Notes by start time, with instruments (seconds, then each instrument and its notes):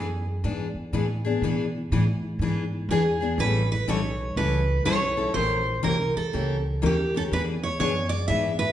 Already playing: upright bass F#2, steel-string acoustic guitar G#4
0.44 upright bass G#2, steel-string acoustic guitar E3 B3 D4 G#4
0.75 muted upright bass stroke
0.93 upright bass A2, steel-string acoustic guitar E3 B3 D4 G#4
1.25 steel-string acoustic guitar B3 D4 G#4
1.42 upright bass B2, steel-string acoustic guitar E3 B3 D4 G#4
1.92 upright bass A2, steel-string acoustic guitar E3 B3 D4 G#4
2.39 upright bass G#2, steel-string acoustic guitar E3 B3 D4
2.43 steel-string acoustic guitar G#4
2.89 upright bass E2, steel-string acoustic guitar E3 B3 D4 G#4
3.21 steel-string acoustic guitar B3 D4 G#4
3.38 upright bass A1, steel-string acoustic guitar E3 G3 C#4 E4 A4 B4
3.72 steel-string acoustic guitar B4
3.88 upright bass B1, steel-string acoustic guitar E3 G3 C#4 E4 A4 C#5
4.36 upright bass C#2, steel-string acoustic guitar E3 G3 C#4 E4 A4 B4
4.85 upright bass B1, steel-string acoustic guitar E3 G3 C#4 E4 A4 C#5
5.17 steel-string acoustic guitar C#4 E4 A4
5.34 upright bass A#1, steel-string acoustic guitar E3 A#3 C#4 G4 A#4 C5
5.83 upright bass C2, steel-string acoustic guitar E3 A#3 C#4 G4 A#4
6.16 steel-string acoustic guitar A4, muted upright bass stroke
6.33 upright bass C#2, steel-string acoustic guitar E3 A#3 C#4 G4 A#4
6.82 upright bass D#2, steel-string acoustic guitar E3 A#3 C#4 G4 A#4
6.86 steel-string acoustic guitar G4
7.15 steel-string acoustic guitar C#4 G4 A4 A#4
7.31 upright bass E2, steel-string acoustic guitar E3 B3 D4 G#4 B4
7.63 steel-string acoustic guitar C#5
7.80 upright bass F#2, steel-string acoustic guitar E3 B3 D4 G#4 C#5
8.09 steel-string acoustic guitar D5
8.28 upright bass G#2, steel-string acoustic guitar E3 B3 D4 G#4 E5
8.59 steel-string acoustic guitar B4